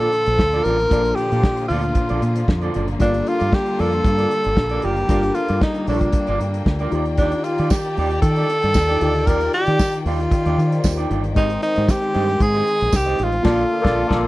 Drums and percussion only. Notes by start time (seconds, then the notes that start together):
0.00 closed hi-hat
0.12 closed hi-hat
0.26 closed hi-hat
0.39 kick, snare
0.52 closed hi-hat
0.65 closed hi-hat
0.79 closed hi-hat
0.91 kick, closed hi-hat
1.05 closed hi-hat
1.17 closed hi-hat
1.32 closed hi-hat
1.43 kick, snare
1.57 closed hi-hat
1.70 open hi-hat
1.83 closed hi-hat
1.95 kick, closed hi-hat
2.09 closed hi-hat
2.22 closed hi-hat
2.36 closed hi-hat
2.48 kick, snare
2.62 closed hi-hat
2.74 closed hi-hat
2.88 closed hi-hat
3.00 kick, closed hi-hat
3.14 closed hi-hat
3.27 closed hi-hat
3.40 closed hi-hat
3.53 kick, snare
3.66 closed hi-hat
3.79 open hi-hat
3.93 closed hi-hat
4.04 kick, closed hi-hat
4.18 closed hi-hat
4.31 closed hi-hat
4.44 closed hi-hat
4.57 kick, snare
4.69 closed hi-hat
4.82 closed hi-hat
4.96 closed hi-hat
5.09 kick, closed hi-hat
5.23 closed hi-hat
5.35 closed hi-hat
5.48 closed hi-hat
5.61 kick, snare
5.74 closed hi-hat
5.87 open hi-hat
6.01 kick, closed hi-hat
6.12 kick, closed hi-hat
6.27 closed hi-hat
6.40 closed hi-hat
6.54 closed hi-hat
6.66 kick, snare
6.79 closed hi-hat
6.92 closed hi-hat
7.05 closed hi-hat
7.17 kick, closed hi-hat
7.32 closed hi-hat
7.44 closed hi-hat
7.58 closed hi-hat
7.70 kick, snare, tambourine
7.84 closed hi-hat
7.97 open hi-hat
8.11 closed hi-hat
8.22 kick, closed hi-hat
8.36 closed hi-hat
8.49 closed hi-hat
8.62 closed hi-hat
8.74 kick, snare, tambourine
8.88 closed hi-hat
9.01 closed hi-hat
9.15 closed hi-hat
9.27 kick, closed hi-hat
9.41 closed hi-hat
9.53 closed hi-hat
9.66 closed hi-hat
9.79 kick, snare, tambourine
9.93 closed hi-hat
10.06 open hi-hat
10.20 closed hi-hat
10.31 kick, closed hi-hat
10.45 closed hi-hat
10.59 closed hi-hat
10.72 closed hi-hat
10.84 kick, snare, tambourine
10.97 closed hi-hat
11.11 closed hi-hat
11.24 closed hi-hat
11.36 kick, closed hi-hat
11.50 closed hi-hat
11.62 closed hi-hat
11.76 closed hi-hat
11.88 kick, snare, tambourine
12.02 closed hi-hat
12.14 open hi-hat
12.29 closed hi-hat
12.40 kick, closed hi-hat
12.54 closed hi-hat
12.67 closed hi-hat
12.81 closed hi-hat
12.92 kick, snare, tambourine
13.06 closed hi-hat
13.19 closed hi-hat
13.32 closed hi-hat
13.44 kick, snare, crash
13.85 kick, snare
14.11 kick, snare